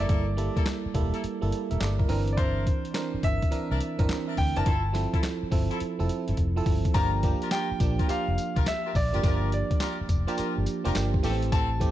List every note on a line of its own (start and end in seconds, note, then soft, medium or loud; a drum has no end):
0.00 0.30 G3 medium
0.00 0.30 A#3 medium
0.00 0.30 E4 medium
0.00 0.30 A4 medium
0.00 0.53 D5 medium
0.08 0.48 G1 loud
0.08 0.26 A#3 medium
0.08 0.26 E4 medium
0.08 0.26 A4 medium
0.08 kick loud
0.08 closed hi-hat medium
0.37 0.75 G3 medium
0.37 0.75 A#3 medium
0.37 0.76 E4 medium
0.37 0.76 A4 medium
0.37 closed hi-hat medium
0.56 0.65 A#3 medium
0.56 0.65 E4 medium
0.56 0.65 A4 medium
0.56 kick loud
0.56 closed hi-hat medium
0.66 snare loud
0.66 clap medium
0.66 closed hi-hat medium
0.86 muted fingered electric bass stroke soft
0.94 1.10 E1 medium
0.94 1.22 G3 medium
0.94 1.22 A#3 medium
0.94 1.22 E4 medium
0.94 1.22 A4 loud
0.94 kick medium
0.94 closed hi-hat medium
1.13 1.22 A#3 medium
1.13 1.22 E4 medium
1.13 1.22 A4 medium
1.13 closed hi-hat medium
1.24 muted fingered electric bass stroke soft
1.24 closed hi-hat medium
1.41 1.50 G1 medium
1.41 1.75 G3 medium
1.41 1.75 A#3 medium
1.41 1.52 E4 medium
1.41 1.52 A4 medium
1.52 closed hi-hat medium
1.71 1.79 E1 medium
1.71 1.80 A#4 medium
1.71 1.80 E5 medium
1.71 closed hi-hat medium
1.80 2.04 G1 medium
1.80 1.99 A4 medium
1.80 1.98 D5 medium
1.80 snare loud
1.80 clap loud
1.80 closed hi-hat medium
1.99 2.27 E4 medium
1.99 2.09 A#4 medium
1.99 kick medium
2.08 2.71 G1 loud
2.08 2.81 E3 medium
2.08 2.81 C4 medium
2.08 2.81 D4 medium
2.08 2.82 A#4 loud
2.08 open hi-hat medium
2.28 closed hi-hat medium
2.33 2.38 D5 medium
2.37 2.64 D4 medium
2.37 2.65 E4 medium
2.37 2.65 A#4 loud
2.37 3.26 C5 medium
2.37 kick loud
2.37 closed hi-hat medium
2.67 kick loud
2.67 closed hi-hat medium
2.85 closed hi-hat medium
2.94 3.32 E3 medium
2.94 3.32 C4 medium
2.94 3.33 D4 medium
2.94 3.33 A#4 medium
2.94 snare loud
2.94 clap medium
2.94 closed hi-hat medium
3.14 muted fingered electric bass stroke soft
3.23 3.39 G1 medium
3.23 4.42 E5 loud
3.23 kick medium
3.23 closed hi-hat medium
3.42 kick medium
3.42 closed hi-hat medium
3.51 3.79 E3 medium
3.51 3.79 C4 medium
3.51 3.79 D4 medium
3.51 3.79 A#4 medium
3.51 muted fingered electric bass stroke soft
3.51 closed hi-hat medium
3.70 3.79 C2 medium
3.70 3.79 D4 medium
3.70 3.79 E4 medium
3.70 3.80 A#4 medium
3.80 closed hi-hat medium
3.98 4.07 G1 medium
3.98 4.32 E3 medium
3.98 4.33 C4 medium
3.98 4.33 D4 medium
3.98 4.33 A#4 loud
3.98 kick medium
3.98 closed hi-hat medium
4.09 snare loud
4.09 clap medium
4.09 closed hi-hat medium
4.28 4.37 D4 medium
4.28 4.37 E4 medium
4.28 4.37 A#4 medium
4.37 4.53 D2 medium
4.37 4.56 G5 loud
4.37 kick medium
4.37 open hi-hat medium
4.56 4.65 F#1 loud
4.56 4.66 E3 medium
4.56 4.66 C4 medium
4.56 4.65 D4 medium
4.56 4.66 D4 medium
4.56 4.64 E4 medium
4.56 4.65 A#4 medium
4.56 4.66 A#4 medium
4.56 5.10 A5 loud
4.56 closed hi-hat medium
4.65 5.05 G1 loud
4.65 4.83 E4 medium
4.65 4.83 F4 medium
4.65 4.83 A4 medium
4.65 kick loud
4.65 closed hi-hat medium
4.93 5.32 F3 medium
4.93 5.32 C4 medium
4.93 5.32 E4 medium
4.93 5.33 A4 loud
4.93 snare medium
4.93 closed hi-hat medium
5.13 5.22 E4 medium
5.13 5.22 F4 medium
5.13 5.22 A4 medium
5.13 kick loud
5.13 closed hi-hat medium
5.23 snare loud
5.23 clap medium
5.23 closed hi-hat medium
5.43 muted fingered electric bass stroke soft
5.51 5.67 G1 loud
5.51 5.79 F3 medium
5.51 5.79 C4 medium
5.51 5.79 E4 medium
5.51 5.79 A4 medium
5.51 kick medium
5.51 open hi-hat medium
5.70 5.79 E4 medium
5.70 5.80 F4 medium
5.70 5.80 A4 medium
5.70 closed hi-hat medium
5.80 muted fingered electric bass stroke soft
5.80 closed hi-hat medium
5.99 6.08 F1 medium
5.99 6.33 F3 medium
5.99 6.33 C4 medium
5.99 6.33 E4 medium
5.99 6.33 A4 medium
6.09 closed hi-hat medium
6.28 6.36 G1 loud
6.28 closed hi-hat medium
6.37 6.61 F1 loud
6.37 kick medium
6.37 closed hi-hat medium
6.56 6.83 F3 medium
6.56 6.83 C4 medium
6.56 6.83 E4 medium
6.56 6.83 A4 loud
6.66 6.82 G1 medium
6.66 kick loud
6.66 open hi-hat medium
6.85 kick loud
6.85 closed hi-hat medium
6.94 7.33 G1 loud
6.94 7.16 F3 medium
6.94 7.16 A#3 medium
6.94 7.16 D4 medium
6.94 7.11 F4 medium
6.94 7.12 G4 medium
6.94 7.17 G4 loud
6.94 7.12 A#4 loud
6.94 7.53 A#5 loud
6.94 kick loud
6.94 closed hi-hat medium
6.94 tambourine medium
7.23 7.61 F3 medium
7.23 7.62 A#3 medium
7.23 7.62 D4 medium
7.23 7.62 G4 loud
7.23 kick medium
7.23 closed hi-hat medium
7.42 7.50 F4 medium
7.42 7.51 G4 medium
7.42 7.51 A#4 medium
7.42 closed hi-hat medium
7.51 7.69 F4 medium
7.51 7.69 G4 medium
7.51 7.69 A#4 medium
7.51 8.05 G5 loud
7.51 snare loud
7.51 clap medium
7.51 closed hi-hat medium
7.51 tambourine loud
7.71 muted fingered electric bass stroke soft
7.80 7.96 A#1 medium
7.80 8.02 F3 medium
7.80 8.02 A#3 medium
7.80 8.02 D4 medium
7.80 8.02 G4 medium
7.80 kick medium
7.80 closed hi-hat medium
7.80 tambourine medium
7.99 8.07 F4 medium
7.99 8.07 G4 medium
7.99 8.08 A#4 medium
7.99 kick medium
7.99 closed hi-hat medium
8.08 8.73 F3 medium
8.08 8.73 A#3 medium
8.08 8.73 D4 medium
8.08 8.26 F4 medium
8.08 8.26 G4 medium
8.08 8.73 G4 medium
8.08 8.26 A#4 medium
8.08 8.69 F5 loud
8.08 muted fingered electric bass stroke soft
8.08 closed hi-hat medium
8.08 tambourine medium
8.28 8.36 F1 medium
8.38 closed hi-hat medium
8.38 tambourine medium
8.56 8.64 C2 medium
8.56 8.65 F4 medium
8.56 8.65 G4 medium
8.56 8.65 A#4 medium
8.56 kick loud
8.56 closed hi-hat medium
8.66 8.96 E5 loud
8.66 snare loud
8.66 clap medium
8.66 closed hi-hat medium
8.66 tambourine loud
8.85 8.94 F4 medium
8.85 8.94 G4 medium
8.85 8.94 A#4 medium
8.95 9.10 A#1 medium
8.95 9.49 D5 medium
8.95 kick medium
8.95 open hi-hat medium
8.95 tambourine medium
9.12 9.22 F#1 medium
9.12 9.19 F3 medium
9.12 9.19 A#3 medium
9.12 9.20 D4 medium
9.12 9.23 F4 medium
9.12 9.20 G4 medium
9.12 9.23 G4 medium
9.12 9.23 A#4 medium
9.12 closed hi-hat medium
9.23 9.62 G1 loud
9.23 9.87 F3 medium
9.23 9.87 A#3 medium
9.23 9.88 D4 medium
9.23 9.51 F4 medium
9.23 9.88 G4 medium
9.23 9.51 G4 medium
9.23 9.51 A#4 loud
9.23 kick loud
9.23 closed hi-hat medium
9.23 tambourine medium
9.52 10.63 D5 medium
9.52 closed hi-hat medium
9.71 kick loud
9.71 closed hi-hat medium
9.80 9.98 F4 medium
9.80 9.98 G4 medium
9.80 9.98 A#4 medium
9.80 snare loud
9.80 clap medium
9.80 closed hi-hat medium
9.80 tambourine loud
10.01 muted fingered electric bass stroke soft
10.09 10.24 F1 medium
10.09 kick medium
10.09 closed hi-hat medium
10.09 tambourine medium
10.27 10.61 F3 medium
10.27 10.61 A#3 medium
10.27 10.61 D4 medium
10.27 10.36 F4 medium
10.27 10.37 G4 medium
10.27 10.62 G4 loud
10.27 10.37 A#4 medium
10.27 closed hi-hat medium
10.37 10.55 F4 medium
10.37 10.55 G4 medium
10.37 10.55 A#4 medium
10.37 muted fingered electric bass stroke soft
10.37 closed hi-hat medium
10.37 tambourine medium
10.58 10.65 G1 medium
10.66 closed hi-hat medium
10.66 tambourine medium
10.84 10.94 F1 loud
10.84 11.11 F3 medium
10.84 11.11 A#3 medium
10.84 11.11 D4 medium
10.84 10.94 F4 medium
10.84 11.11 G4 loud
10.84 10.94 G4 medium
10.84 10.94 A#4 medium
10.84 closed hi-hat medium
10.95 11.18 G1 medium
10.95 snare loud
10.95 clap medium
10.95 closed hi-hat medium
10.95 tambourine loud
11.14 kick medium
11.23 11.85 A1 loud
11.23 11.73 E3 loud
11.23 11.73 A3 loud
11.23 11.32 B3 medium
11.23 11.41 C4 medium
11.23 11.41 G4 medium
11.23 11.73 G4 loud
11.23 11.41 A4 medium
11.23 open hi-hat medium
11.23 tambourine medium
11.30 11.76 C4 medium
11.43 closed hi-hat medium
11.52 11.69 C4 medium
11.52 11.69 G4 medium
11.52 11.69 A4 loud
11.52 11.91 A5 loud
11.52 kick loud
11.52 closed hi-hat medium
11.52 tambourine medium
11.80 11.91 E3 medium
11.80 11.91 A3 medium
11.80 11.91 C4 medium
11.80 11.91 G4 loud
11.80 kick medium
11.80 closed hi-hat medium